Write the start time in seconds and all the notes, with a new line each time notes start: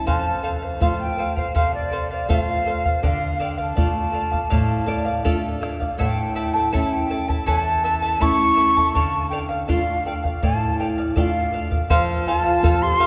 0.06 F2 A4 C5 F5 A5, bombo low
0.43 A4 C5 F5
0.62 C5 F5
0.80 A3 C4 F4 A4 C5 F5, bombo low
0.99 G5
1.18 A4 C5 F5
1.36 C5 F5, bombo low
1.55 C3 A4 C5 F5, bombo low
1.74 D5
1.92 A4 C5 F5
2.11 C5 D5 F5
2.29 A3 C4 F4 A4 C5 F5, bombo low
2.66 A4 C5 F5
2.85 C5 F5, bombo low
3.03 D3 A4 D5 F5 G5, bombo low
3.08 F5
3.39 A4 D5 F5 G5
3.58 D5 F5
3.62 A5
3.76 A3 D4 F4 A4 D5 F5, bombo low
4.12 A4 D5 F5
4.31 D5 F5, bombo low
4.50 A2 A4 D5 F5, bombo low
4.86 A4 D5 F5
5.05 D5 F5
5.24 A3 D4 F4 A4 D5 F5, bombo low
5.61 A4 D5 F5, bombo rim
5.80 D5 F5, bombo low
5.98 A2 E4 A4 C#5 E5 G5 A5, bombo low
6.35 E4 A4 E5 A5
6.54 E4 A4 A5
6.72 A3 C#4 E4 A4 C#5 E5 A5, bombo low
6.86 A5
6.93 G5
7.10 E4 A4 E5 A5
7.28 E4 A4 A5, bombo low
7.46 E2 E4 A4 C#5 E5 A5, bombo low
7.84 E4 A4 E5 A5
8.02 E4 A4 A5
8.20 A3 C#4 E4 A4 C#5 E5 A5 C#6, bombo low
8.57 E4 A4 E5 A5
8.77 E4 A4 A5, bombo low
8.94 D3 A4 D5 F5 A5, bombo low
9.30 A4 D5 F5 G5
9.49 D5 F5
9.68 A3 D4 F4 A4 D5 F5, bombo low
10.06 A4 D5 F5 G5
10.24 D5 F5, bombo low
10.42 A2 A4 D5 F5 A5, bombo low
10.79 A4 D5 F5 G5
10.98 D5 F5
11.16 A3 D4 F4 A4 D5 F5 G5, bombo low
11.22 F5
11.53 A4 D5 F5
11.71 D5 F5, bombo low
11.90 F3 A4 C5 F5, bombo low
12.27 F4 A4 C5 F5 A5
12.44 C5 F5
12.63 C4 F4 A4 C5 F5, bombo low
12.82 G4 C6
13.00 A4 C5 F5